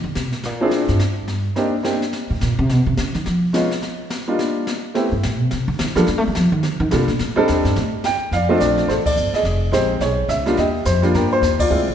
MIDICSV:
0, 0, Header, 1, 5, 480
1, 0, Start_track
1, 0, Tempo, 281690
1, 745, Time_signature, 4, 2, 24, 8
1, 20358, End_track
2, 0, Start_track
2, 0, Title_t, "Upright piano"
2, 0, Program_c, 0, 0
2, 1033, Note_on_c, 0, 53, 67
2, 1044, Note_on_c, 0, 60, 59
2, 1049, Note_on_c, 0, 62, 63
2, 1053, Note_on_c, 0, 64, 60
2, 1064, Note_on_c, 0, 68, 72
2, 1666, Note_off_c, 0, 53, 0
2, 1671, Note_off_c, 0, 60, 0
2, 1674, Note_off_c, 0, 62, 0
2, 1676, Note_off_c, 0, 64, 0
2, 1682, Note_off_c, 0, 68, 0
2, 2652, Note_on_c, 0, 58, 59
2, 2659, Note_on_c, 0, 60, 57
2, 2670, Note_on_c, 0, 62, 55
2, 2673, Note_on_c, 0, 63, 55
2, 2681, Note_on_c, 0, 67, 65
2, 2920, Note_off_c, 0, 58, 0
2, 2924, Note_off_c, 0, 60, 0
2, 2929, Note_off_c, 0, 62, 0
2, 2930, Note_off_c, 0, 63, 0
2, 2934, Note_off_c, 0, 67, 0
2, 3121, Note_on_c, 0, 58, 55
2, 3131, Note_on_c, 0, 60, 47
2, 3135, Note_on_c, 0, 62, 47
2, 3142, Note_on_c, 0, 63, 46
2, 3147, Note_on_c, 0, 67, 60
2, 3394, Note_off_c, 0, 58, 0
2, 3400, Note_off_c, 0, 60, 0
2, 3401, Note_off_c, 0, 62, 0
2, 3405, Note_off_c, 0, 63, 0
2, 3408, Note_off_c, 0, 67, 0
2, 6016, Note_on_c, 0, 56, 61
2, 6026, Note_on_c, 0, 59, 57
2, 6028, Note_on_c, 0, 61, 53
2, 6033, Note_on_c, 0, 63, 57
2, 6039, Note_on_c, 0, 65, 62
2, 6282, Note_off_c, 0, 56, 0
2, 6287, Note_off_c, 0, 59, 0
2, 6288, Note_off_c, 0, 61, 0
2, 6291, Note_off_c, 0, 63, 0
2, 6294, Note_off_c, 0, 65, 0
2, 7285, Note_on_c, 0, 58, 48
2, 7286, Note_on_c, 0, 55, 51
2, 7291, Note_on_c, 0, 62, 47
2, 7298, Note_on_c, 0, 65, 61
2, 7301, Note_on_c, 0, 63, 52
2, 7912, Note_off_c, 0, 58, 0
2, 7913, Note_off_c, 0, 55, 0
2, 7915, Note_off_c, 0, 62, 0
2, 7919, Note_off_c, 0, 65, 0
2, 7920, Note_off_c, 0, 63, 0
2, 8425, Note_on_c, 0, 57, 60
2, 8431, Note_on_c, 0, 59, 53
2, 8437, Note_on_c, 0, 60, 54
2, 8440, Note_on_c, 0, 64, 56
2, 8449, Note_on_c, 0, 67, 68
2, 8687, Note_off_c, 0, 57, 0
2, 8690, Note_off_c, 0, 59, 0
2, 8692, Note_off_c, 0, 60, 0
2, 8694, Note_off_c, 0, 64, 0
2, 8699, Note_off_c, 0, 67, 0
2, 10146, Note_on_c, 0, 55, 64
2, 10149, Note_on_c, 0, 58, 60
2, 10153, Note_on_c, 0, 62, 58
2, 10163, Note_on_c, 0, 65, 57
2, 10168, Note_on_c, 0, 69, 73
2, 10321, Note_off_c, 0, 55, 0
2, 10322, Note_off_c, 0, 58, 0
2, 10324, Note_off_c, 0, 62, 0
2, 10329, Note_off_c, 0, 65, 0
2, 10332, Note_off_c, 0, 69, 0
2, 11770, Note_on_c, 0, 55, 58
2, 11777, Note_on_c, 0, 58, 53
2, 11786, Note_on_c, 0, 62, 53
2, 11791, Note_on_c, 0, 69, 63
2, 11794, Note_on_c, 0, 65, 54
2, 12037, Note_off_c, 0, 55, 0
2, 12041, Note_off_c, 0, 58, 0
2, 12045, Note_off_c, 0, 62, 0
2, 12048, Note_off_c, 0, 69, 0
2, 12049, Note_off_c, 0, 65, 0
2, 12541, Note_on_c, 0, 55, 85
2, 12549, Note_on_c, 0, 60, 76
2, 12551, Note_on_c, 0, 62, 77
2, 12558, Note_on_c, 0, 63, 75
2, 12564, Note_on_c, 0, 69, 91
2, 13177, Note_off_c, 0, 55, 0
2, 13181, Note_off_c, 0, 60, 0
2, 13182, Note_off_c, 0, 62, 0
2, 13186, Note_off_c, 0, 63, 0
2, 13188, Note_off_c, 0, 69, 0
2, 13718, Note_on_c, 0, 79, 88
2, 14195, Note_on_c, 0, 77, 80
2, 14203, Note_off_c, 0, 79, 0
2, 14241, Note_on_c, 0, 74, 55
2, 14458, Note_off_c, 0, 77, 0
2, 14466, Note_on_c, 0, 57, 76
2, 14471, Note_on_c, 0, 75, 71
2, 14474, Note_on_c, 0, 60, 72
2, 14476, Note_on_c, 0, 62, 73
2, 14487, Note_on_c, 0, 65, 87
2, 14629, Note_off_c, 0, 74, 0
2, 14654, Note_on_c, 0, 74, 81
2, 14666, Note_off_c, 0, 75, 0
2, 15100, Note_off_c, 0, 57, 0
2, 15104, Note_off_c, 0, 60, 0
2, 15105, Note_off_c, 0, 62, 0
2, 15110, Note_off_c, 0, 65, 0
2, 15139, Note_on_c, 0, 72, 74
2, 15151, Note_off_c, 0, 74, 0
2, 15180, Note_on_c, 0, 69, 56
2, 15224, Note_off_c, 0, 72, 0
2, 15438, Note_on_c, 0, 74, 81
2, 15922, Note_on_c, 0, 75, 82
2, 15929, Note_off_c, 0, 74, 0
2, 15946, Note_on_c, 0, 68, 60
2, 16055, Note_off_c, 0, 69, 0
2, 16364, Note_off_c, 0, 75, 0
2, 16564, Note_on_c, 0, 56, 65
2, 16570, Note_on_c, 0, 60, 62
2, 16581, Note_on_c, 0, 63, 57
2, 16583, Note_on_c, 0, 67, 69
2, 16585, Note_on_c, 0, 72, 76
2, 16823, Note_off_c, 0, 68, 0
2, 17030, Note_off_c, 0, 72, 0
2, 17053, Note_off_c, 0, 56, 0
2, 17056, Note_off_c, 0, 60, 0
2, 17061, Note_off_c, 0, 63, 0
2, 17061, Note_on_c, 0, 73, 76
2, 17063, Note_off_c, 0, 67, 0
2, 17099, Note_on_c, 0, 68, 54
2, 17533, Note_on_c, 0, 76, 82
2, 17556, Note_off_c, 0, 73, 0
2, 17819, Note_on_c, 0, 55, 70
2, 17833, Note_on_c, 0, 58, 65
2, 17839, Note_on_c, 0, 62, 62
2, 17849, Note_on_c, 0, 65, 76
2, 17975, Note_off_c, 0, 68, 0
2, 17996, Note_off_c, 0, 55, 0
2, 18004, Note_off_c, 0, 58, 0
2, 18007, Note_off_c, 0, 62, 0
2, 18012, Note_off_c, 0, 65, 0
2, 18021, Note_on_c, 0, 75, 88
2, 18033, Note_off_c, 0, 76, 0
2, 18055, Note_on_c, 0, 67, 59
2, 18468, Note_off_c, 0, 75, 0
2, 18505, Note_on_c, 0, 72, 85
2, 18783, Note_on_c, 0, 55, 67
2, 18793, Note_on_c, 0, 58, 63
2, 18799, Note_on_c, 0, 62, 59
2, 18810, Note_on_c, 0, 65, 74
2, 18933, Note_off_c, 0, 67, 0
2, 18951, Note_off_c, 0, 72, 0
2, 19005, Note_on_c, 0, 70, 77
2, 19033, Note_on_c, 0, 67, 58
2, 19293, Note_off_c, 0, 70, 0
2, 19301, Note_on_c, 0, 72, 99
2, 19420, Note_off_c, 0, 55, 0
2, 19426, Note_off_c, 0, 58, 0
2, 19428, Note_off_c, 0, 62, 0
2, 19434, Note_off_c, 0, 65, 0
2, 19735, Note_off_c, 0, 72, 0
2, 19760, Note_on_c, 0, 74, 84
2, 19790, Note_on_c, 0, 65, 63
2, 19903, Note_off_c, 0, 67, 0
2, 19931, Note_off_c, 0, 65, 0
2, 19935, Note_on_c, 0, 56, 61
2, 19939, Note_on_c, 0, 60, 57
2, 19952, Note_on_c, 0, 64, 53
2, 19957, Note_on_c, 0, 65, 64
2, 20201, Note_off_c, 0, 56, 0
2, 20203, Note_off_c, 0, 60, 0
2, 20204, Note_off_c, 0, 74, 0
2, 20210, Note_off_c, 0, 64, 0
2, 20212, Note_off_c, 0, 65, 0
2, 20358, End_track
3, 0, Start_track
3, 0, Title_t, "Upright bass"
3, 0, Program_c, 1, 32
3, 63, Note_on_c, 1, 50, 88
3, 253, Note_off_c, 1, 50, 0
3, 275, Note_on_c, 1, 48, 75
3, 549, Note_off_c, 1, 48, 0
3, 549, Note_on_c, 1, 45, 92
3, 771, Note_off_c, 1, 45, 0
3, 771, Note_on_c, 1, 46, 84
3, 1498, Note_off_c, 1, 46, 0
3, 1509, Note_on_c, 1, 43, 77
3, 2499, Note_off_c, 1, 43, 0
3, 3923, Note_on_c, 1, 45, 90
3, 4104, Note_off_c, 1, 45, 0
3, 4132, Note_on_c, 1, 46, 80
3, 4401, Note_off_c, 1, 46, 0
3, 4408, Note_on_c, 1, 48, 106
3, 4613, Note_off_c, 1, 48, 0
3, 4613, Note_on_c, 1, 47, 77
3, 4870, Note_off_c, 1, 47, 0
3, 4880, Note_on_c, 1, 48, 88
3, 5062, Note_off_c, 1, 48, 0
3, 5077, Note_on_c, 1, 49, 76
3, 5353, Note_off_c, 1, 49, 0
3, 5367, Note_on_c, 1, 51, 88
3, 5546, Note_off_c, 1, 51, 0
3, 5567, Note_on_c, 1, 53, 83
3, 6929, Note_off_c, 1, 53, 0
3, 8719, Note_on_c, 1, 43, 84
3, 8901, Note_off_c, 1, 43, 0
3, 8943, Note_on_c, 1, 45, 84
3, 9195, Note_off_c, 1, 45, 0
3, 9195, Note_on_c, 1, 47, 87
3, 9379, Note_off_c, 1, 47, 0
3, 9417, Note_on_c, 1, 48, 77
3, 9665, Note_off_c, 1, 48, 0
3, 9676, Note_on_c, 1, 50, 100
3, 9859, Note_off_c, 1, 50, 0
3, 9883, Note_on_c, 1, 51, 83
3, 10146, Note_off_c, 1, 51, 0
3, 10156, Note_on_c, 1, 53, 95
3, 10339, Note_off_c, 1, 53, 0
3, 10365, Note_on_c, 1, 55, 80
3, 10530, Note_off_c, 1, 55, 0
3, 10530, Note_on_c, 1, 57, 101
3, 10672, Note_off_c, 1, 57, 0
3, 10693, Note_on_c, 1, 55, 93
3, 10834, Note_off_c, 1, 55, 0
3, 10850, Note_on_c, 1, 53, 92
3, 11099, Note_off_c, 1, 53, 0
3, 11109, Note_on_c, 1, 51, 100
3, 11337, Note_off_c, 1, 51, 0
3, 11337, Note_on_c, 1, 50, 82
3, 11576, Note_off_c, 1, 50, 0
3, 11586, Note_on_c, 1, 51, 109
3, 11773, Note_off_c, 1, 51, 0
3, 11808, Note_on_c, 1, 48, 91
3, 12050, Note_off_c, 1, 48, 0
3, 12060, Note_on_c, 1, 46, 89
3, 12249, Note_off_c, 1, 46, 0
3, 12270, Note_on_c, 1, 45, 72
3, 12538, Note_off_c, 1, 45, 0
3, 12548, Note_on_c, 1, 36, 47
3, 12733, Note_off_c, 1, 36, 0
3, 12760, Note_on_c, 1, 39, 78
3, 13017, Note_off_c, 1, 39, 0
3, 13027, Note_on_c, 1, 43, 85
3, 13212, Note_off_c, 1, 43, 0
3, 13239, Note_on_c, 1, 45, 93
3, 13407, Note_off_c, 1, 45, 0
3, 14166, Note_on_c, 1, 41, 80
3, 14638, Note_off_c, 1, 41, 0
3, 14654, Note_on_c, 1, 34, 86
3, 15117, Note_off_c, 1, 34, 0
3, 15127, Note_on_c, 1, 33, 82
3, 15599, Note_off_c, 1, 33, 0
3, 15606, Note_on_c, 1, 31, 80
3, 15883, Note_off_c, 1, 31, 0
3, 16073, Note_on_c, 1, 29, 79
3, 16546, Note_off_c, 1, 29, 0
3, 16556, Note_on_c, 1, 34, 84
3, 17034, Note_off_c, 1, 34, 0
3, 17047, Note_on_c, 1, 35, 82
3, 17514, Note_off_c, 1, 35, 0
3, 17524, Note_on_c, 1, 37, 87
3, 17999, Note_off_c, 1, 37, 0
3, 18017, Note_on_c, 1, 39, 77
3, 18486, Note_off_c, 1, 39, 0
3, 18503, Note_on_c, 1, 41, 87
3, 18969, Note_off_c, 1, 41, 0
3, 18988, Note_on_c, 1, 43, 78
3, 19444, Note_off_c, 1, 43, 0
3, 19454, Note_on_c, 1, 39, 88
3, 19925, Note_off_c, 1, 39, 0
3, 19942, Note_on_c, 1, 38, 81
3, 20099, Note_on_c, 1, 36, 57
3, 20125, Note_off_c, 1, 38, 0
3, 20242, Note_off_c, 1, 36, 0
3, 20252, Note_on_c, 1, 32, 61
3, 20358, Note_off_c, 1, 32, 0
3, 20358, End_track
4, 0, Start_track
4, 0, Title_t, "Muted upright bass strokes"
4, 15898, Note_on_c, 9, 29, 37
4, 16068, Note_off_c, 9, 29, 0
4, 20358, End_track
5, 0, Start_track
5, 0, Title_t, "Drums"
5, 261, Note_on_c, 9, 38, 60
5, 431, Note_off_c, 9, 38, 0
5, 550, Note_on_c, 9, 38, 41
5, 721, Note_off_c, 9, 38, 0
5, 741, Note_on_c, 9, 25, 54
5, 741, Note_on_c, 9, 38, 47
5, 911, Note_off_c, 9, 38, 0
5, 1214, Note_on_c, 9, 38, 65
5, 1384, Note_off_c, 9, 38, 0
5, 1505, Note_on_c, 9, 38, 43
5, 1675, Note_off_c, 9, 38, 0
5, 1694, Note_off_c, 9, 25, 0
5, 1694, Note_on_c, 9, 25, 57
5, 1694, Note_on_c, 9, 38, 48
5, 1865, Note_off_c, 9, 38, 0
5, 2176, Note_on_c, 9, 38, 65
5, 2347, Note_off_c, 9, 38, 0
5, 2660, Note_off_c, 9, 25, 0
5, 2660, Note_on_c, 9, 25, 51
5, 2660, Note_on_c, 9, 38, 48
5, 2830, Note_off_c, 9, 38, 0
5, 3144, Note_on_c, 9, 38, 68
5, 3314, Note_off_c, 9, 38, 0
5, 3441, Note_on_c, 9, 38, 45
5, 3612, Note_off_c, 9, 38, 0
5, 3627, Note_off_c, 9, 25, 0
5, 3627, Note_on_c, 9, 25, 56
5, 3627, Note_on_c, 9, 38, 52
5, 3797, Note_off_c, 9, 38, 0
5, 4109, Note_on_c, 9, 38, 60
5, 4279, Note_off_c, 9, 38, 0
5, 4590, Note_off_c, 9, 25, 0
5, 4590, Note_on_c, 9, 25, 46
5, 4590, Note_on_c, 9, 38, 50
5, 4761, Note_off_c, 9, 38, 0
5, 5068, Note_on_c, 9, 38, 65
5, 5238, Note_off_c, 9, 38, 0
5, 5356, Note_on_c, 9, 38, 43
5, 5526, Note_off_c, 9, 38, 0
5, 5550, Note_off_c, 9, 25, 0
5, 5550, Note_on_c, 9, 25, 51
5, 5550, Note_on_c, 9, 38, 47
5, 5721, Note_off_c, 9, 38, 0
5, 6030, Note_on_c, 9, 38, 64
5, 6201, Note_off_c, 9, 38, 0
5, 6323, Note_on_c, 9, 38, 42
5, 6493, Note_off_c, 9, 38, 0
5, 6516, Note_off_c, 9, 25, 0
5, 6516, Note_on_c, 9, 25, 58
5, 6516, Note_on_c, 9, 38, 51
5, 6686, Note_off_c, 9, 38, 0
5, 6992, Note_on_c, 9, 38, 69
5, 7163, Note_off_c, 9, 38, 0
5, 7479, Note_off_c, 9, 25, 0
5, 7479, Note_on_c, 9, 25, 53
5, 7479, Note_on_c, 9, 38, 51
5, 7649, Note_off_c, 9, 38, 0
5, 7957, Note_on_c, 9, 38, 60
5, 8127, Note_off_c, 9, 38, 0
5, 8436, Note_off_c, 9, 25, 0
5, 8436, Note_on_c, 9, 25, 45
5, 8436, Note_on_c, 9, 38, 50
5, 8606, Note_off_c, 9, 38, 0
5, 8917, Note_on_c, 9, 38, 68
5, 9087, Note_off_c, 9, 38, 0
5, 9387, Note_off_c, 9, 25, 0
5, 9387, Note_on_c, 9, 25, 58
5, 9387, Note_on_c, 9, 38, 51
5, 9557, Note_off_c, 9, 38, 0
5, 9866, Note_on_c, 9, 38, 70
5, 10036, Note_off_c, 9, 38, 0
5, 10153, Note_on_c, 9, 38, 44
5, 10323, Note_off_c, 9, 38, 0
5, 10336, Note_off_c, 9, 25, 0
5, 10336, Note_on_c, 9, 25, 52
5, 10336, Note_on_c, 9, 38, 49
5, 10506, Note_off_c, 9, 38, 0
5, 10820, Note_on_c, 9, 38, 69
5, 10990, Note_off_c, 9, 38, 0
5, 11295, Note_off_c, 9, 25, 0
5, 11295, Note_on_c, 9, 25, 54
5, 11295, Note_on_c, 9, 38, 56
5, 11465, Note_off_c, 9, 38, 0
5, 11775, Note_on_c, 9, 38, 62
5, 11946, Note_off_c, 9, 38, 0
5, 12064, Note_on_c, 9, 38, 44
5, 12235, Note_off_c, 9, 38, 0
5, 12257, Note_off_c, 9, 25, 0
5, 12257, Note_on_c, 9, 25, 52
5, 12257, Note_on_c, 9, 38, 52
5, 12427, Note_off_c, 9, 38, 0
5, 12742, Note_on_c, 9, 38, 65
5, 12913, Note_off_c, 9, 38, 0
5, 13036, Note_on_c, 9, 38, 47
5, 13206, Note_off_c, 9, 38, 0
5, 13224, Note_off_c, 9, 25, 0
5, 13224, Note_on_c, 9, 25, 58
5, 13224, Note_on_c, 9, 38, 54
5, 13395, Note_off_c, 9, 38, 0
5, 13699, Note_on_c, 9, 38, 64
5, 13870, Note_off_c, 9, 38, 0
5, 14184, Note_off_c, 9, 25, 0
5, 14184, Note_on_c, 9, 25, 51
5, 14184, Note_on_c, 9, 38, 41
5, 14355, Note_off_c, 9, 38, 0
5, 14660, Note_on_c, 9, 38, 56
5, 14663, Note_on_c, 9, 44, 58
5, 14830, Note_off_c, 9, 38, 0
5, 14833, Note_off_c, 9, 44, 0
5, 14955, Note_on_c, 9, 38, 37
5, 15125, Note_off_c, 9, 38, 0
5, 15153, Note_off_c, 9, 25, 0
5, 15153, Note_on_c, 9, 25, 45
5, 15153, Note_on_c, 9, 38, 45
5, 15324, Note_off_c, 9, 38, 0
5, 15435, Note_on_c, 9, 36, 79
5, 15440, Note_on_c, 9, 51, 73
5, 15605, Note_off_c, 9, 36, 0
5, 15611, Note_off_c, 9, 51, 0
5, 15624, Note_on_c, 9, 44, 49
5, 15795, Note_off_c, 9, 44, 0
5, 15910, Note_on_c, 9, 38, 37
5, 16081, Note_off_c, 9, 38, 0
5, 16101, Note_off_c, 9, 25, 0
5, 16101, Note_on_c, 9, 25, 42
5, 16101, Note_on_c, 9, 38, 45
5, 16272, Note_off_c, 9, 38, 0
5, 16578, Note_on_c, 9, 38, 55
5, 16581, Note_on_c, 9, 44, 49
5, 16748, Note_off_c, 9, 38, 0
5, 16751, Note_off_c, 9, 44, 0
5, 17049, Note_off_c, 9, 25, 0
5, 17049, Note_on_c, 9, 25, 43
5, 17049, Note_on_c, 9, 38, 44
5, 17220, Note_off_c, 9, 38, 0
5, 17535, Note_on_c, 9, 38, 53
5, 17538, Note_on_c, 9, 44, 44
5, 17705, Note_off_c, 9, 38, 0
5, 17708, Note_off_c, 9, 44, 0
5, 17823, Note_on_c, 9, 38, 37
5, 17994, Note_off_c, 9, 38, 0
5, 18012, Note_off_c, 9, 25, 0
5, 18012, Note_on_c, 9, 25, 43
5, 18012, Note_on_c, 9, 38, 44
5, 18182, Note_off_c, 9, 38, 0
5, 18492, Note_on_c, 9, 38, 53
5, 18496, Note_on_c, 9, 44, 54
5, 18663, Note_off_c, 9, 38, 0
5, 18666, Note_off_c, 9, 44, 0
5, 18796, Note_on_c, 9, 38, 38
5, 18966, Note_off_c, 9, 38, 0
5, 18988, Note_off_c, 9, 25, 0
5, 18988, Note_on_c, 9, 25, 42
5, 18988, Note_on_c, 9, 38, 44
5, 19159, Note_off_c, 9, 38, 0
5, 19470, Note_on_c, 9, 38, 53
5, 19474, Note_on_c, 9, 44, 59
5, 19641, Note_off_c, 9, 38, 0
5, 19644, Note_off_c, 9, 44, 0
5, 19756, Note_on_c, 9, 36, 77
5, 19762, Note_on_c, 9, 51, 70
5, 19926, Note_off_c, 9, 36, 0
5, 19932, Note_off_c, 9, 51, 0
5, 19952, Note_off_c, 9, 25, 0
5, 19952, Note_on_c, 9, 25, 49
5, 20358, Note_off_c, 9, 25, 0
5, 20358, End_track
0, 0, End_of_file